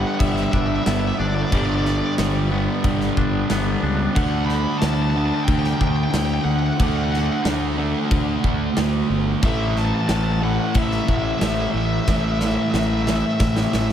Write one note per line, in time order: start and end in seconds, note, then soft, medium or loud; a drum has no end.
0.00 0.53 G2 medium
0.00 1.51 G2 medium
0.00 0.86 D3 medium
0.00 1.50 D3 medium
0.00 0.19 G3 medium
0.00 1.50 G3 medium
0.00 0.86 B3 medium
0.00 0.08 F#5 medium
0.08 0.14 F#5 medium
0.15 0.19 F#5 medium
0.20 0.44 G1 medium
0.20 1.85 G3 medium
0.20 0.28 E5 medium
0.20 kick loud
0.20 crash medium
0.28 0.35 E5 medium
0.36 0.43 E5 medium
0.36 snare soft
0.43 0.51 E5 medium
0.52 0.77 G1 medium
0.52 1.19 D4 medium
0.52 0.59 E5 medium
0.52 kick medium
0.59 0.66 E5 medium
0.67 0.75 E5 medium
0.76 0.83 E5 medium
0.83 1.10 G1 loud
0.83 2.51 B3 medium
0.83 0.91 E5 medium
0.83 snare loud
0.83 crash medium
0.92 0.99 E5 medium
1.00 1.07 E5 medium
1.08 1.16 E5 medium
1.19 1.43 G1 loud
1.19 2.85 D4 medium
1.19 1.27 D5 medium
1.27 1.34 D5 medium
1.35 1.42 D5 medium
1.42 1.50 D5 medium
1.51 2.00 G1 loud
1.51 2.49 G2 loud
1.51 3.17 G2 medium
1.51 2.50 D3 loud
1.51 2.50 G3 loud
1.51 1.58 D5 medium
1.51 kick loud
1.51 crash medium
1.58 1.65 D5 medium
1.66 1.73 D5 medium
1.75 1.82 D5 medium
1.82 3.50 D3 medium
1.82 1.90 D5 medium
1.82 snare soft
1.90 1.97 D5 medium
1.98 2.05 D5 medium
2.06 2.14 D5 medium
2.18 2.66 G1 medium
2.18 2.84 G3 medium
2.18 snare loud
2.18 crash medium
2.51 4.15 G2 medium
2.51 4.14 D3 medium
2.51 4.14 G3 medium
2.51 3.50 B3 medium
2.84 3.08 G1 medium
2.84 4.17 G3 medium
2.84 kick loud
2.84 crash medium
3.01 snare soft
3.17 3.41 G1 medium
3.17 3.82 D4 medium
3.17 kick medium
3.50 3.74 G1 medium
3.50 4.17 B3 medium
3.50 snare loud
3.50 crash medium
3.83 4.07 C#2 medium
3.83 4.16 D4 medium
4.15 4.64 D2 medium
4.15 5.16 D3 loud
4.15 5.15 A3 medium
4.15 5.14 D4 loud
4.15 4.45 F#5 loud
4.15 kick loud
4.15 crash medium
4.46 4.78 B5 loud
4.46 snare soft
4.78 5.30 D2 medium
4.78 4.86 A5 loud
4.78 snare loud
4.78 crash medium
4.87 4.93 A5 medium
4.94 5.02 A5 medium
5.02 5.10 A5 medium
5.10 6.78 D4 medium
5.10 5.18 A5 medium
5.16 6.79 D3 medium
5.16 6.80 A3 medium
5.16 5.26 A5 medium
5.26 5.34 A5 medium
5.35 5.43 A5 medium
5.44 5.72 D2 medium
5.44 5.51 G5 loud
5.44 kick loud
5.44 crash medium
5.51 5.59 G5 medium
5.59 5.67 G5 medium
5.65 5.74 G5 medium
5.65 snare soft
5.74 5.81 G5 medium
5.81 6.05 D2 loud
5.81 5.87 G5 medium
5.81 kick medium
5.88 5.95 G5 medium
5.96 6.03 G5 medium
6.04 6.10 G5 medium
6.11 6.37 D2 loud
6.11 6.18 G5 medium
6.11 snare loud
6.11 crash medium
6.18 6.25 G5 medium
6.26 6.33 G5 medium
6.34 6.41 G5 medium
6.41 6.70 D2 medium
6.41 6.51 F#5 medium
6.41 6.44 G5 medium
6.51 6.59 F#5 medium
6.59 6.66 F#5 medium
6.67 6.73 F#5 medium
6.73 6.81 F#5 medium
6.80 7.28 D2 loud
6.80 7.77 D3 medium
6.80 7.79 A3 loud
6.80 7.77 D4 loud
6.80 6.87 F#5 medium
6.80 kick loud
6.80 crash medium
6.88 6.95 F#5 medium
6.96 7.04 F#5 medium
7.04 7.12 F#5 medium
7.12 7.19 F#5 medium
7.12 snare soft
7.19 7.26 F#5 medium
7.26 7.32 F#5 medium
7.33 7.40 F#5 medium
7.45 7.93 D2 medium
7.45 snare loud
7.45 crash medium
7.78 9.42 D3 medium
7.78 9.44 A3 medium
7.78 9.41 D4 medium
8.11 8.36 D2 loud
8.11 kick loud
8.11 crash medium
8.44 8.68 D2 loud
8.44 kick medium
8.77 9.01 D2 medium
8.77 snare loud
8.77 crash medium
9.10 9.34 G1 medium
9.42 9.91 A1 loud
9.42 10.44 A2 medium
9.42 10.43 E3 loud
9.42 10.41 A3 loud
9.42 9.78 E5 loud
9.42 kick loud
9.42 crash medium
9.76 9.85 A5 loud
9.76 snare soft
9.85 9.93 A5 loud
9.95 10.01 A5 loud
10.01 10.08 A5 loud
10.08 10.57 A1 loud
10.08 10.16 A5 loud
10.08 snare loud
10.08 crash medium
10.16 10.24 A5 loud
10.24 10.31 A5 loud
10.32 10.39 A5 medium
10.42 12.06 A2 medium
10.42 12.08 E3 medium
10.42 12.05 A3 medium
10.42 10.77 F#5 loud
10.74 10.99 A1 medium
10.74 10.84 E5 medium
10.74 kick loud
10.74 crash medium
10.84 10.92 E5 medium
10.92 11.00 E5 medium
10.92 snare soft
11.01 11.07 E5 medium
11.08 11.32 A1 loud
11.08 11.15 E5 medium
11.08 kick medium
11.16 11.24 E5 medium
11.24 11.31 E5 medium
11.31 11.38 E5 medium
11.39 11.65 A1 loud
11.39 11.46 E5 medium
11.39 snare loud
11.39 crash medium
11.47 11.54 E5 medium
11.54 11.61 E5 medium
11.61 11.69 E5 medium
11.71 11.98 A1 medium
11.71 11.78 E5 medium
11.78 11.85 E5 medium
11.86 11.93 E5 medium
11.93 12.00 E5 medium
12.00 12.08 E5 medium
12.07 12.56 A1 loud
12.07 13.05 A2 loud
12.07 13.05 E3 loud
12.07 13.05 A3 loud
12.07 12.16 E5 medium
12.07 kick loud
12.07 snare medium
12.17 12.24 E5 medium
12.24 12.31 E5 medium
12.32 12.39 E5 medium
12.39 12.47 E5 medium
12.39 snare medium
12.47 12.55 E5 medium
12.55 12.62 E5 medium
12.63 12.71 E5 medium
12.72 13.22 A1 loud
12.72 12.78 E5 medium
12.72 snare medium
12.79 12.87 E5 medium
12.87 12.94 E5 medium
12.94 13.02 E5 medium
13.02 13.09 E5 medium
13.07 13.93 A2 medium
13.07 13.93 E3 medium
13.07 13.93 A3 medium
13.07 13.16 E5 medium
13.07 snare medium
13.17 13.25 E5 medium
13.25 13.33 E5 medium
13.34 13.40 E5 medium
13.40 13.64 A1 medium
13.40 13.48 E5 medium
13.40 kick loud
13.40 snare loud
13.48 13.56 E5 medium
13.56 13.63 E5 medium
13.56 snare medium
13.63 13.71 E5 medium
13.72 13.93 A1 medium
13.72 13.79 E5 medium
13.72 snare loud
13.79 13.87 E5 medium
13.88 13.93 E5 medium